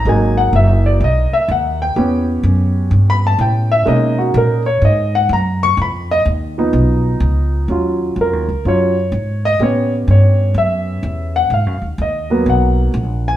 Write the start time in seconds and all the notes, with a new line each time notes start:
0.05 G#1 F#3 G#3 A#3 D#4 G#5
0.37 F#5
0.53 F#1 E5
0.86 D5
1.00 B1 D#5
1.32 E5, muted upright bass stroke
1.48 D#2 F#5
1.82 G5
1.96 E2 B3 C#4 G4
2.43 F#2
2.91 G2
3.10 B5
3.27 A5
3.38 A2 G5
3.72 E5
3.85 B2 G#3 A#3 C#4 D#4 D#5
4.19 F#4
4.34 A#2 A#4
4.66 C#5
4.82 G#2 D#5
5.15 F#5
5.29 F#2 A#5
5.63 C#6
5.77 F2
5.82 B5
6.11 D#5
6.25 D#2
6.58 F3 B3 D#4
6.73 B1
7.20 C#2
7.68 D#2 F#3 C#4 F4
8.16 F2
8.21 A#4
8.33 D#2
8.48 C#2
8.65 F#2 F#3 C#4 F4 C#5
9.12 G#2
9.45 D#5
9.59 A2 B3 C#4 G4 C#5
10.08 G2 C#5
10.54 F#2 E5
11.03 E2
11.36 F#5
11.50 G#2 F5
11.66 F#2
11.82 D#2
11.98 D#2 D#5
12.30 F#3 A#3 B3
12.46 B1 F#5
12.94 A#1
13.28 G#5